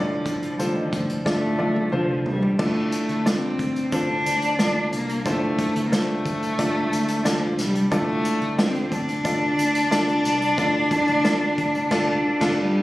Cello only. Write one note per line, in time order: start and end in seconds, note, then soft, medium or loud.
0.00 0.58 F3 medium
0.57 0.68 G3 medium
0.66 0.77 F3 medium
0.76 0.86 D#3 medium
0.85 0.93 F3 medium
0.94 1.09 F3 medium
1.27 1.89 A3 medium
1.94 2.24 F3 medium
2.27 2.58 G3 medium
2.60 3.29 A3 medium
3.27 3.95 C4 medium
3.94 4.59 D4 loud
4.60 4.91 D4 medium
4.94 5.24 A#3 medium
5.27 5.82 A3 medium
5.86 5.94 A#3 medium
5.93 7.28 A3 loud
7.26 7.59 F3 medium
7.59 7.90 G3 medium
7.93 8.55 A3 medium
8.59 8.94 C4 medium
8.92 12.58 D4 loud
12.60 12.82 G3 medium